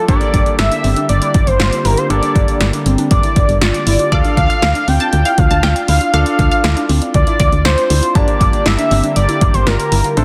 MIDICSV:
0, 0, Header, 1, 8, 480
1, 0, Start_track
1, 0, Tempo, 504202
1, 82, Time_signature, 4, 2, 24, 8
1, 9754, End_track
2, 0, Start_track
2, 0, Title_t, "Synth pluck"
2, 0, Program_c, 0, 84
2, 3923, Note_on_c, 0, 74, 111
2, 3992, Note_off_c, 0, 74, 0
2, 4283, Note_on_c, 0, 77, 80
2, 4352, Note_off_c, 0, 77, 0
2, 4403, Note_on_c, 0, 77, 90
2, 4472, Note_off_c, 0, 77, 0
2, 4762, Note_on_c, 0, 81, 89
2, 4831, Note_off_c, 0, 81, 0
2, 5003, Note_on_c, 0, 77, 79
2, 5072, Note_off_c, 0, 77, 0
2, 5243, Note_on_c, 0, 81, 84
2, 5312, Note_off_c, 0, 81, 0
2, 5363, Note_on_c, 0, 79, 85
2, 5701, Note_off_c, 0, 79, 0
2, 5842, Note_on_c, 0, 77, 112
2, 5980, Note_off_c, 0, 77, 0
2, 6204, Note_on_c, 0, 77, 75
2, 6541, Note_off_c, 0, 77, 0
2, 7043, Note_on_c, 0, 74, 71
2, 7181, Note_off_c, 0, 74, 0
2, 7284, Note_on_c, 0, 72, 82
2, 7622, Note_off_c, 0, 72, 0
2, 9754, End_track
3, 0, Start_track
3, 0, Title_t, "Analog synth lead"
3, 0, Program_c, 1, 81
3, 81, Note_on_c, 1, 74, 110
3, 528, Note_off_c, 1, 74, 0
3, 558, Note_on_c, 1, 76, 108
3, 1006, Note_off_c, 1, 76, 0
3, 1039, Note_on_c, 1, 74, 98
3, 1399, Note_on_c, 1, 72, 97
3, 1413, Note_off_c, 1, 74, 0
3, 1761, Note_on_c, 1, 70, 86
3, 1775, Note_off_c, 1, 72, 0
3, 1880, Note_on_c, 1, 72, 87
3, 1895, Note_off_c, 1, 70, 0
3, 1995, Note_off_c, 1, 72, 0
3, 2001, Note_on_c, 1, 74, 99
3, 2683, Note_off_c, 1, 74, 0
3, 2961, Note_on_c, 1, 74, 88
3, 3408, Note_off_c, 1, 74, 0
3, 3439, Note_on_c, 1, 74, 92
3, 3921, Note_on_c, 1, 77, 107
3, 3935, Note_off_c, 1, 74, 0
3, 4156, Note_off_c, 1, 77, 0
3, 4162, Note_on_c, 1, 77, 107
3, 4644, Note_on_c, 1, 79, 113
3, 4658, Note_off_c, 1, 77, 0
3, 5125, Note_on_c, 1, 77, 109
3, 5139, Note_off_c, 1, 79, 0
3, 5599, Note_off_c, 1, 77, 0
3, 5605, Note_on_c, 1, 77, 100
3, 5827, Note_off_c, 1, 77, 0
3, 5845, Note_on_c, 1, 77, 101
3, 6525, Note_off_c, 1, 77, 0
3, 6803, Note_on_c, 1, 74, 109
3, 7283, Note_on_c, 1, 72, 101
3, 7297, Note_off_c, 1, 74, 0
3, 7762, Note_on_c, 1, 74, 112
3, 7777, Note_off_c, 1, 72, 0
3, 8243, Note_on_c, 1, 76, 118
3, 8257, Note_off_c, 1, 74, 0
3, 8717, Note_off_c, 1, 76, 0
3, 8722, Note_on_c, 1, 74, 109
3, 9082, Note_on_c, 1, 72, 97
3, 9096, Note_off_c, 1, 74, 0
3, 9203, Note_on_c, 1, 70, 94
3, 9217, Note_off_c, 1, 72, 0
3, 9678, Note_off_c, 1, 70, 0
3, 9684, Note_on_c, 1, 72, 107
3, 9754, Note_off_c, 1, 72, 0
3, 9754, End_track
4, 0, Start_track
4, 0, Title_t, "Grand piano"
4, 0, Program_c, 2, 0
4, 82, Note_on_c, 2, 58, 69
4, 82, Note_on_c, 2, 67, 64
4, 82, Note_on_c, 2, 69, 74
4, 1964, Note_off_c, 2, 58, 0
4, 1964, Note_off_c, 2, 67, 0
4, 1964, Note_off_c, 2, 69, 0
4, 2002, Note_on_c, 2, 58, 66
4, 2002, Note_on_c, 2, 67, 62
4, 2002, Note_on_c, 2, 69, 77
4, 3884, Note_off_c, 2, 58, 0
4, 3884, Note_off_c, 2, 67, 0
4, 3884, Note_off_c, 2, 69, 0
4, 3922, Note_on_c, 2, 62, 66
4, 3922, Note_on_c, 2, 65, 61
4, 3923, Note_on_c, 2, 69, 75
4, 5804, Note_off_c, 2, 62, 0
4, 5804, Note_off_c, 2, 65, 0
4, 5804, Note_off_c, 2, 69, 0
4, 5842, Note_on_c, 2, 62, 69
4, 5842, Note_on_c, 2, 65, 63
4, 5842, Note_on_c, 2, 69, 78
4, 7724, Note_off_c, 2, 62, 0
4, 7724, Note_off_c, 2, 65, 0
4, 7724, Note_off_c, 2, 69, 0
4, 7762, Note_on_c, 2, 58, 70
4, 7762, Note_on_c, 2, 67, 63
4, 7762, Note_on_c, 2, 81, 77
4, 9644, Note_off_c, 2, 58, 0
4, 9644, Note_off_c, 2, 67, 0
4, 9644, Note_off_c, 2, 81, 0
4, 9683, Note_on_c, 2, 60, 67
4, 9683, Note_on_c, 2, 64, 62
4, 9683, Note_on_c, 2, 69, 74
4, 9754, Note_off_c, 2, 60, 0
4, 9754, Note_off_c, 2, 64, 0
4, 9754, Note_off_c, 2, 69, 0
4, 9754, End_track
5, 0, Start_track
5, 0, Title_t, "Synth pluck"
5, 0, Program_c, 3, 84
5, 81, Note_on_c, 3, 62, 98
5, 181, Note_off_c, 3, 62, 0
5, 201, Note_on_c, 3, 62, 74
5, 301, Note_off_c, 3, 62, 0
5, 321, Note_on_c, 3, 62, 80
5, 521, Note_off_c, 3, 62, 0
5, 562, Note_on_c, 3, 64, 86
5, 662, Note_off_c, 3, 64, 0
5, 683, Note_on_c, 3, 62, 75
5, 782, Note_off_c, 3, 62, 0
5, 803, Note_on_c, 3, 60, 78
5, 902, Note_off_c, 3, 60, 0
5, 924, Note_on_c, 3, 62, 74
5, 1122, Note_off_c, 3, 62, 0
5, 1162, Note_on_c, 3, 64, 78
5, 1361, Note_off_c, 3, 64, 0
5, 1522, Note_on_c, 3, 65, 89
5, 1721, Note_off_c, 3, 65, 0
5, 1761, Note_on_c, 3, 64, 77
5, 1861, Note_off_c, 3, 64, 0
5, 1881, Note_on_c, 3, 65, 75
5, 1981, Note_off_c, 3, 65, 0
5, 2001, Note_on_c, 3, 62, 101
5, 2101, Note_off_c, 3, 62, 0
5, 2122, Note_on_c, 3, 62, 77
5, 2221, Note_off_c, 3, 62, 0
5, 2242, Note_on_c, 3, 62, 79
5, 2441, Note_off_c, 3, 62, 0
5, 2483, Note_on_c, 3, 64, 86
5, 2582, Note_off_c, 3, 64, 0
5, 2604, Note_on_c, 3, 62, 73
5, 2703, Note_off_c, 3, 62, 0
5, 2723, Note_on_c, 3, 60, 81
5, 2822, Note_off_c, 3, 60, 0
5, 2843, Note_on_c, 3, 62, 75
5, 3042, Note_off_c, 3, 62, 0
5, 3082, Note_on_c, 3, 64, 77
5, 3281, Note_off_c, 3, 64, 0
5, 3443, Note_on_c, 3, 65, 86
5, 3641, Note_off_c, 3, 65, 0
5, 3683, Note_on_c, 3, 64, 80
5, 3782, Note_off_c, 3, 64, 0
5, 3803, Note_on_c, 3, 65, 73
5, 3902, Note_off_c, 3, 65, 0
5, 3922, Note_on_c, 3, 62, 97
5, 4022, Note_off_c, 3, 62, 0
5, 4044, Note_on_c, 3, 62, 73
5, 4143, Note_off_c, 3, 62, 0
5, 4163, Note_on_c, 3, 62, 81
5, 4362, Note_off_c, 3, 62, 0
5, 4403, Note_on_c, 3, 64, 85
5, 4502, Note_off_c, 3, 64, 0
5, 4524, Note_on_c, 3, 62, 75
5, 4623, Note_off_c, 3, 62, 0
5, 4643, Note_on_c, 3, 60, 77
5, 4742, Note_off_c, 3, 60, 0
5, 4763, Note_on_c, 3, 62, 72
5, 4962, Note_off_c, 3, 62, 0
5, 5003, Note_on_c, 3, 64, 77
5, 5202, Note_off_c, 3, 64, 0
5, 5361, Note_on_c, 3, 65, 87
5, 5561, Note_off_c, 3, 65, 0
5, 5602, Note_on_c, 3, 64, 79
5, 5702, Note_off_c, 3, 64, 0
5, 5722, Note_on_c, 3, 65, 74
5, 5821, Note_off_c, 3, 65, 0
5, 5841, Note_on_c, 3, 62, 100
5, 5941, Note_off_c, 3, 62, 0
5, 5961, Note_on_c, 3, 62, 74
5, 6061, Note_off_c, 3, 62, 0
5, 6082, Note_on_c, 3, 62, 80
5, 6281, Note_off_c, 3, 62, 0
5, 6321, Note_on_c, 3, 64, 87
5, 6421, Note_off_c, 3, 64, 0
5, 6442, Note_on_c, 3, 62, 77
5, 6541, Note_off_c, 3, 62, 0
5, 6562, Note_on_c, 3, 60, 81
5, 6662, Note_off_c, 3, 60, 0
5, 6682, Note_on_c, 3, 62, 76
5, 6881, Note_off_c, 3, 62, 0
5, 6924, Note_on_c, 3, 64, 78
5, 7122, Note_off_c, 3, 64, 0
5, 7282, Note_on_c, 3, 65, 85
5, 7481, Note_off_c, 3, 65, 0
5, 7523, Note_on_c, 3, 64, 82
5, 7622, Note_off_c, 3, 64, 0
5, 7642, Note_on_c, 3, 65, 79
5, 7742, Note_off_c, 3, 65, 0
5, 7762, Note_on_c, 3, 62, 103
5, 7862, Note_off_c, 3, 62, 0
5, 7883, Note_on_c, 3, 62, 75
5, 7982, Note_off_c, 3, 62, 0
5, 8002, Note_on_c, 3, 62, 80
5, 8201, Note_off_c, 3, 62, 0
5, 8242, Note_on_c, 3, 64, 89
5, 8342, Note_off_c, 3, 64, 0
5, 8362, Note_on_c, 3, 62, 74
5, 8462, Note_off_c, 3, 62, 0
5, 8483, Note_on_c, 3, 60, 81
5, 8582, Note_off_c, 3, 60, 0
5, 8603, Note_on_c, 3, 62, 75
5, 8802, Note_off_c, 3, 62, 0
5, 8842, Note_on_c, 3, 64, 80
5, 9041, Note_off_c, 3, 64, 0
5, 9201, Note_on_c, 3, 65, 86
5, 9401, Note_off_c, 3, 65, 0
5, 9443, Note_on_c, 3, 64, 83
5, 9542, Note_off_c, 3, 64, 0
5, 9562, Note_on_c, 3, 65, 77
5, 9662, Note_off_c, 3, 65, 0
5, 9682, Note_on_c, 3, 62, 100
5, 9754, Note_off_c, 3, 62, 0
5, 9754, End_track
6, 0, Start_track
6, 0, Title_t, "Analog synth pad"
6, 0, Program_c, 4, 89
6, 81, Note_on_c, 4, 55, 68
6, 81, Note_on_c, 4, 58, 70
6, 82, Note_on_c, 4, 50, 75
6, 82, Note_on_c, 4, 67, 83
6, 3883, Note_off_c, 4, 55, 0
6, 3883, Note_off_c, 4, 58, 0
6, 3884, Note_off_c, 4, 50, 0
6, 3884, Note_off_c, 4, 67, 0
6, 3923, Note_on_c, 4, 62, 66
6, 3923, Note_on_c, 4, 65, 80
6, 7724, Note_off_c, 4, 62, 0
6, 7725, Note_off_c, 4, 65, 0
6, 7762, Note_on_c, 4, 50, 77
6, 7762, Note_on_c, 4, 67, 81
6, 7763, Note_on_c, 4, 55, 68
6, 7763, Note_on_c, 4, 58, 69
6, 9663, Note_off_c, 4, 50, 0
6, 9663, Note_off_c, 4, 55, 0
6, 9663, Note_off_c, 4, 58, 0
6, 9663, Note_off_c, 4, 67, 0
6, 9684, Note_on_c, 4, 60, 68
6, 9754, Note_off_c, 4, 60, 0
6, 9754, End_track
7, 0, Start_track
7, 0, Title_t, "FM bass"
7, 0, Program_c, 5, 39
7, 81, Note_on_c, 5, 31, 101
7, 185, Note_off_c, 5, 31, 0
7, 320, Note_on_c, 5, 31, 96
7, 424, Note_off_c, 5, 31, 0
7, 561, Note_on_c, 5, 31, 96
7, 665, Note_off_c, 5, 31, 0
7, 801, Note_on_c, 5, 31, 100
7, 905, Note_off_c, 5, 31, 0
7, 1042, Note_on_c, 5, 31, 111
7, 1145, Note_off_c, 5, 31, 0
7, 1281, Note_on_c, 5, 31, 91
7, 1385, Note_off_c, 5, 31, 0
7, 1401, Note_on_c, 5, 31, 101
7, 1505, Note_off_c, 5, 31, 0
7, 1521, Note_on_c, 5, 31, 109
7, 1625, Note_off_c, 5, 31, 0
7, 1760, Note_on_c, 5, 31, 101
7, 1865, Note_off_c, 5, 31, 0
7, 1999, Note_on_c, 5, 31, 109
7, 2104, Note_off_c, 5, 31, 0
7, 2242, Note_on_c, 5, 31, 104
7, 2345, Note_off_c, 5, 31, 0
7, 2479, Note_on_c, 5, 31, 101
7, 2584, Note_off_c, 5, 31, 0
7, 2719, Note_on_c, 5, 31, 103
7, 2824, Note_off_c, 5, 31, 0
7, 2961, Note_on_c, 5, 31, 111
7, 3065, Note_off_c, 5, 31, 0
7, 3202, Note_on_c, 5, 31, 93
7, 3305, Note_off_c, 5, 31, 0
7, 3320, Note_on_c, 5, 31, 102
7, 3424, Note_off_c, 5, 31, 0
7, 3439, Note_on_c, 5, 31, 100
7, 3544, Note_off_c, 5, 31, 0
7, 3681, Note_on_c, 5, 31, 110
7, 3785, Note_off_c, 5, 31, 0
7, 3922, Note_on_c, 5, 38, 110
7, 4026, Note_off_c, 5, 38, 0
7, 4162, Note_on_c, 5, 38, 101
7, 4265, Note_off_c, 5, 38, 0
7, 4402, Note_on_c, 5, 38, 104
7, 4506, Note_off_c, 5, 38, 0
7, 4643, Note_on_c, 5, 38, 101
7, 4746, Note_off_c, 5, 38, 0
7, 4883, Note_on_c, 5, 38, 114
7, 4986, Note_off_c, 5, 38, 0
7, 5122, Note_on_c, 5, 38, 110
7, 5226, Note_off_c, 5, 38, 0
7, 5241, Note_on_c, 5, 38, 98
7, 5345, Note_off_c, 5, 38, 0
7, 5361, Note_on_c, 5, 38, 104
7, 5465, Note_off_c, 5, 38, 0
7, 5601, Note_on_c, 5, 38, 104
7, 5705, Note_off_c, 5, 38, 0
7, 5840, Note_on_c, 5, 38, 106
7, 5944, Note_off_c, 5, 38, 0
7, 6082, Note_on_c, 5, 38, 98
7, 6185, Note_off_c, 5, 38, 0
7, 6322, Note_on_c, 5, 38, 105
7, 6425, Note_off_c, 5, 38, 0
7, 6561, Note_on_c, 5, 38, 104
7, 6665, Note_off_c, 5, 38, 0
7, 6802, Note_on_c, 5, 38, 105
7, 6905, Note_off_c, 5, 38, 0
7, 7042, Note_on_c, 5, 38, 107
7, 7146, Note_off_c, 5, 38, 0
7, 7160, Note_on_c, 5, 38, 100
7, 7265, Note_off_c, 5, 38, 0
7, 7281, Note_on_c, 5, 38, 100
7, 7385, Note_off_c, 5, 38, 0
7, 7522, Note_on_c, 5, 38, 111
7, 7625, Note_off_c, 5, 38, 0
7, 7762, Note_on_c, 5, 31, 111
7, 7865, Note_off_c, 5, 31, 0
7, 8002, Note_on_c, 5, 31, 108
7, 8105, Note_off_c, 5, 31, 0
7, 8244, Note_on_c, 5, 31, 103
7, 8346, Note_off_c, 5, 31, 0
7, 8483, Note_on_c, 5, 31, 108
7, 8586, Note_off_c, 5, 31, 0
7, 8723, Note_on_c, 5, 31, 109
7, 8826, Note_off_c, 5, 31, 0
7, 8962, Note_on_c, 5, 31, 99
7, 9066, Note_off_c, 5, 31, 0
7, 9083, Note_on_c, 5, 31, 99
7, 9186, Note_off_c, 5, 31, 0
7, 9203, Note_on_c, 5, 31, 105
7, 9306, Note_off_c, 5, 31, 0
7, 9441, Note_on_c, 5, 31, 101
7, 9545, Note_off_c, 5, 31, 0
7, 9683, Note_on_c, 5, 33, 110
7, 9754, Note_off_c, 5, 33, 0
7, 9754, End_track
8, 0, Start_track
8, 0, Title_t, "Drums"
8, 81, Note_on_c, 9, 36, 118
8, 81, Note_on_c, 9, 42, 65
8, 176, Note_off_c, 9, 36, 0
8, 176, Note_off_c, 9, 42, 0
8, 198, Note_on_c, 9, 42, 51
8, 294, Note_off_c, 9, 42, 0
8, 321, Note_on_c, 9, 36, 96
8, 321, Note_on_c, 9, 42, 74
8, 416, Note_off_c, 9, 36, 0
8, 416, Note_off_c, 9, 42, 0
8, 440, Note_on_c, 9, 42, 49
8, 535, Note_off_c, 9, 42, 0
8, 559, Note_on_c, 9, 38, 116
8, 559, Note_on_c, 9, 42, 77
8, 654, Note_off_c, 9, 42, 0
8, 655, Note_off_c, 9, 38, 0
8, 681, Note_on_c, 9, 42, 53
8, 777, Note_off_c, 9, 42, 0
8, 801, Note_on_c, 9, 46, 53
8, 896, Note_off_c, 9, 46, 0
8, 918, Note_on_c, 9, 42, 55
8, 1014, Note_off_c, 9, 42, 0
8, 1039, Note_on_c, 9, 42, 76
8, 1134, Note_off_c, 9, 42, 0
8, 1159, Note_on_c, 9, 42, 55
8, 1254, Note_off_c, 9, 42, 0
8, 1279, Note_on_c, 9, 42, 80
8, 1281, Note_on_c, 9, 36, 104
8, 1374, Note_off_c, 9, 42, 0
8, 1377, Note_off_c, 9, 36, 0
8, 1401, Note_on_c, 9, 42, 54
8, 1496, Note_off_c, 9, 42, 0
8, 1520, Note_on_c, 9, 38, 101
8, 1520, Note_on_c, 9, 42, 72
8, 1615, Note_off_c, 9, 38, 0
8, 1616, Note_off_c, 9, 42, 0
8, 1642, Note_on_c, 9, 42, 54
8, 1738, Note_off_c, 9, 42, 0
8, 1761, Note_on_c, 9, 46, 70
8, 1856, Note_off_c, 9, 46, 0
8, 1880, Note_on_c, 9, 42, 58
8, 1975, Note_off_c, 9, 42, 0
8, 2001, Note_on_c, 9, 42, 64
8, 2096, Note_off_c, 9, 42, 0
8, 2120, Note_on_c, 9, 42, 51
8, 2215, Note_off_c, 9, 42, 0
8, 2241, Note_on_c, 9, 36, 92
8, 2243, Note_on_c, 9, 42, 73
8, 2337, Note_off_c, 9, 36, 0
8, 2339, Note_off_c, 9, 42, 0
8, 2362, Note_on_c, 9, 42, 49
8, 2457, Note_off_c, 9, 42, 0
8, 2481, Note_on_c, 9, 38, 118
8, 2481, Note_on_c, 9, 42, 77
8, 2576, Note_off_c, 9, 38, 0
8, 2576, Note_off_c, 9, 42, 0
8, 2602, Note_on_c, 9, 42, 57
8, 2697, Note_off_c, 9, 42, 0
8, 2722, Note_on_c, 9, 42, 76
8, 2817, Note_off_c, 9, 42, 0
8, 2839, Note_on_c, 9, 42, 54
8, 2935, Note_off_c, 9, 42, 0
8, 2959, Note_on_c, 9, 42, 75
8, 2961, Note_on_c, 9, 36, 95
8, 3054, Note_off_c, 9, 42, 0
8, 3056, Note_off_c, 9, 36, 0
8, 3079, Note_on_c, 9, 42, 58
8, 3174, Note_off_c, 9, 42, 0
8, 3200, Note_on_c, 9, 42, 79
8, 3202, Note_on_c, 9, 36, 106
8, 3295, Note_off_c, 9, 42, 0
8, 3297, Note_off_c, 9, 36, 0
8, 3321, Note_on_c, 9, 42, 56
8, 3417, Note_off_c, 9, 42, 0
8, 3441, Note_on_c, 9, 38, 104
8, 3442, Note_on_c, 9, 42, 72
8, 3536, Note_off_c, 9, 38, 0
8, 3537, Note_off_c, 9, 42, 0
8, 3564, Note_on_c, 9, 42, 54
8, 3659, Note_off_c, 9, 42, 0
8, 3681, Note_on_c, 9, 46, 70
8, 3777, Note_off_c, 9, 46, 0
8, 3801, Note_on_c, 9, 42, 57
8, 3897, Note_off_c, 9, 42, 0
8, 3922, Note_on_c, 9, 36, 118
8, 3922, Note_on_c, 9, 42, 66
8, 4017, Note_off_c, 9, 36, 0
8, 4017, Note_off_c, 9, 42, 0
8, 4041, Note_on_c, 9, 42, 52
8, 4136, Note_off_c, 9, 42, 0
8, 4162, Note_on_c, 9, 36, 92
8, 4164, Note_on_c, 9, 42, 75
8, 4257, Note_off_c, 9, 36, 0
8, 4259, Note_off_c, 9, 42, 0
8, 4283, Note_on_c, 9, 42, 50
8, 4378, Note_off_c, 9, 42, 0
8, 4402, Note_on_c, 9, 38, 115
8, 4402, Note_on_c, 9, 42, 78
8, 4497, Note_off_c, 9, 42, 0
8, 4498, Note_off_c, 9, 38, 0
8, 4524, Note_on_c, 9, 42, 57
8, 4619, Note_off_c, 9, 42, 0
8, 4644, Note_on_c, 9, 46, 54
8, 4739, Note_off_c, 9, 46, 0
8, 4761, Note_on_c, 9, 42, 57
8, 4856, Note_off_c, 9, 42, 0
8, 4881, Note_on_c, 9, 42, 75
8, 4976, Note_off_c, 9, 42, 0
8, 5001, Note_on_c, 9, 42, 58
8, 5096, Note_off_c, 9, 42, 0
8, 5120, Note_on_c, 9, 42, 78
8, 5122, Note_on_c, 9, 36, 106
8, 5215, Note_off_c, 9, 42, 0
8, 5218, Note_off_c, 9, 36, 0
8, 5242, Note_on_c, 9, 42, 57
8, 5337, Note_off_c, 9, 42, 0
8, 5360, Note_on_c, 9, 38, 104
8, 5361, Note_on_c, 9, 42, 71
8, 5456, Note_off_c, 9, 38, 0
8, 5456, Note_off_c, 9, 42, 0
8, 5483, Note_on_c, 9, 42, 55
8, 5578, Note_off_c, 9, 42, 0
8, 5601, Note_on_c, 9, 46, 70
8, 5696, Note_off_c, 9, 46, 0
8, 5721, Note_on_c, 9, 42, 57
8, 5816, Note_off_c, 9, 42, 0
8, 5842, Note_on_c, 9, 42, 65
8, 5937, Note_off_c, 9, 42, 0
8, 5960, Note_on_c, 9, 42, 51
8, 6055, Note_off_c, 9, 42, 0
8, 6082, Note_on_c, 9, 36, 89
8, 6084, Note_on_c, 9, 42, 74
8, 6177, Note_off_c, 9, 36, 0
8, 6179, Note_off_c, 9, 42, 0
8, 6202, Note_on_c, 9, 42, 49
8, 6297, Note_off_c, 9, 42, 0
8, 6321, Note_on_c, 9, 38, 113
8, 6321, Note_on_c, 9, 42, 77
8, 6416, Note_off_c, 9, 38, 0
8, 6416, Note_off_c, 9, 42, 0
8, 6443, Note_on_c, 9, 42, 54
8, 6538, Note_off_c, 9, 42, 0
8, 6563, Note_on_c, 9, 46, 54
8, 6658, Note_off_c, 9, 46, 0
8, 6681, Note_on_c, 9, 42, 54
8, 6776, Note_off_c, 9, 42, 0
8, 6801, Note_on_c, 9, 42, 75
8, 6802, Note_on_c, 9, 36, 92
8, 6896, Note_off_c, 9, 42, 0
8, 6897, Note_off_c, 9, 36, 0
8, 6921, Note_on_c, 9, 42, 56
8, 7016, Note_off_c, 9, 42, 0
8, 7041, Note_on_c, 9, 42, 85
8, 7043, Note_on_c, 9, 36, 103
8, 7136, Note_off_c, 9, 42, 0
8, 7138, Note_off_c, 9, 36, 0
8, 7164, Note_on_c, 9, 42, 55
8, 7259, Note_off_c, 9, 42, 0
8, 7283, Note_on_c, 9, 38, 103
8, 7283, Note_on_c, 9, 42, 71
8, 7378, Note_off_c, 9, 38, 0
8, 7379, Note_off_c, 9, 42, 0
8, 7405, Note_on_c, 9, 42, 55
8, 7500, Note_off_c, 9, 42, 0
8, 7523, Note_on_c, 9, 46, 69
8, 7618, Note_off_c, 9, 46, 0
8, 7642, Note_on_c, 9, 42, 55
8, 7737, Note_off_c, 9, 42, 0
8, 7761, Note_on_c, 9, 42, 66
8, 7762, Note_on_c, 9, 36, 120
8, 7857, Note_off_c, 9, 36, 0
8, 7857, Note_off_c, 9, 42, 0
8, 7880, Note_on_c, 9, 42, 54
8, 7975, Note_off_c, 9, 42, 0
8, 8002, Note_on_c, 9, 36, 95
8, 8004, Note_on_c, 9, 42, 74
8, 8097, Note_off_c, 9, 36, 0
8, 8100, Note_off_c, 9, 42, 0
8, 8123, Note_on_c, 9, 42, 49
8, 8219, Note_off_c, 9, 42, 0
8, 8242, Note_on_c, 9, 38, 115
8, 8242, Note_on_c, 9, 42, 78
8, 8337, Note_off_c, 9, 38, 0
8, 8337, Note_off_c, 9, 42, 0
8, 8364, Note_on_c, 9, 42, 55
8, 8459, Note_off_c, 9, 42, 0
8, 8484, Note_on_c, 9, 46, 54
8, 8580, Note_off_c, 9, 46, 0
8, 8602, Note_on_c, 9, 42, 55
8, 8697, Note_off_c, 9, 42, 0
8, 8721, Note_on_c, 9, 42, 74
8, 8816, Note_off_c, 9, 42, 0
8, 8842, Note_on_c, 9, 42, 57
8, 8937, Note_off_c, 9, 42, 0
8, 8962, Note_on_c, 9, 42, 84
8, 8963, Note_on_c, 9, 36, 109
8, 9057, Note_off_c, 9, 42, 0
8, 9058, Note_off_c, 9, 36, 0
8, 9083, Note_on_c, 9, 42, 58
8, 9178, Note_off_c, 9, 42, 0
8, 9203, Note_on_c, 9, 38, 103
8, 9204, Note_on_c, 9, 42, 72
8, 9298, Note_off_c, 9, 38, 0
8, 9299, Note_off_c, 9, 42, 0
8, 9326, Note_on_c, 9, 42, 55
8, 9421, Note_off_c, 9, 42, 0
8, 9443, Note_on_c, 9, 46, 68
8, 9538, Note_off_c, 9, 46, 0
8, 9562, Note_on_c, 9, 42, 57
8, 9657, Note_off_c, 9, 42, 0
8, 9683, Note_on_c, 9, 42, 63
8, 9754, Note_off_c, 9, 42, 0
8, 9754, End_track
0, 0, End_of_file